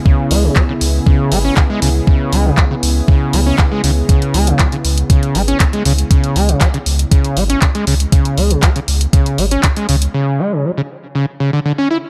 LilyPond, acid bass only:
\new Staff \with { instrumentName = "Acid bass" } { \clef bass \time 4/4 \key cis \minor \tempo 4 = 119 cis8 gis16 cis16 fis16 cis16 r8 cis8 gis16 cis'16 cis16 gis16 cis16 r16 | cis8 gis16 cis16 fis16 cis16 r8 cis8 gis16 cis'16 cis16 gis16 cis16 r16 | cis8 gis16 cis16 fis16 cis16 r8 cis8 gis16 cis'16 cis16 gis16 cis16 r16 | cis8 gis16 cis16 fis16 cis16 r8 cis8 gis16 cis'16 cis16 gis16 cis16 r16 |
cis8 gis16 cis16 fis16 cis16 r8 cis8 gis16 cis'16 cis16 gis16 cis16 r16 | cis8 gis16 cis16 fis16 cis16 r8 cis16 r16 cis16 d16 d16 cis'16 e'16 r16 | }